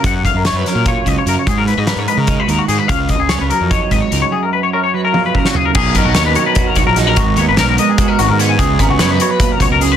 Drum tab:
CC |--------------|--------------|--------------|--------------|
HH |x-x-x-x-x-x-x-|x-x-x-x-x-x-x-|x-x-x-x-x-x-x-|--------------|
SD |----o-o-------|----o---------|----o---------|-----------o--|
T1 |--------------|--------------|--------------|--------o-----|
FT |--------------|--------------|--------------|------------o-|
BD |o-o-----o-o---|o-------o-----|o-o-----o-o---|----------o---|

CC |x-------------|--------------|--------------|
HH |--x-x-x-x-x-x-|x-x-x-x-x-x-x-|x-x-x-x-x-x-x-|
SD |----o-------o-|----o---------|----o---------|
T1 |--------------|--------------|--------------|
FT |--------------|--------------|--------------|
BD |o-o-----o-o---|o-------o-----|o-o-----o-o---|